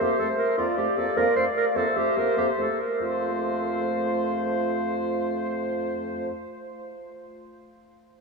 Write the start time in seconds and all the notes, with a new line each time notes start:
Already playing: C5 E5
0.01 F2 A#3 G4
0.19 F2 A3 A4
0.38 A#4
0.57 F2 A#3 F4 D5 F5
0.77 F2 A3 G4
0.97 F2 A#3 A4
1.17 F2 A#3 A#4
1.35 F2 A3 C5
1.57 A#4
1.75 F2 A#3 A4 C5 E5
1.96 F2 A3 G4
2.16 F2 A#3 A#4
2.37 F2 A#3 G4
2.56 F2 A3 A4
2.80 A#4
3.00 F2 A3 F4 C5 F5